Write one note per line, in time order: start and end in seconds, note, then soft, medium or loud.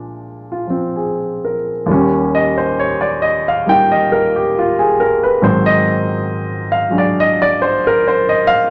0.00 1.88 A#2 medium
0.00 0.66 F3 medium
0.00 1.89 G#3 soft
0.00 1.89 D4 medium
0.00 0.95 G#4 soft
0.00 1.55 D5 medium
0.52 1.17 F4 soft
0.67 1.89 F3 soft
0.67 1.90 C4 soft
0.96 1.71 G#4 soft
1.45 2.08 A#4 soft
1.86 5.42 D#2 medium
1.86 5.41 D#3 soft
1.86 3.65 G3 soft
1.91 5.44 C#4 medium
2.35 2.56 D#5 medium
2.58 2.74 C5 medium
2.80 3.09 C#5 medium
3.01 3.34 D5 medium
3.22 3.44 D#5 medium
3.48 3.64 F5 medium
3.66 5.43 G3 soft
3.66 5.43 A#3 soft
3.66 5.44 D#4 soft
3.66 3.98 G5 medium
3.92 4.24 D#5 medium
4.12 4.33 A#4 medium
4.36 4.52 G4 medium
4.59 4.86 F4 medium
4.79 5.11 G#4 medium
5.00 5.21 A#4 medium
5.23 5.40 B4 medium
5.42 8.70 G#2 medium
5.42 8.70 D#3 soft
5.42 6.88 F#3 medium
5.42 8.70 C4 medium
5.42 5.72 C5 medium
5.66 5.86 D#5 medium
6.72 6.94 F5 medium
6.90 8.70 F#3 soft
6.90 8.70 G#3 soft
6.90 8.70 D4 soft
6.98 7.14 D5 medium
7.20 7.48 D#5 medium
7.42 7.74 D5 medium
7.62 7.83 C5 medium
7.87 8.02 A#4 medium
8.08 8.35 C5 medium
8.29 8.61 D#5 medium
8.47 8.69 F5 loud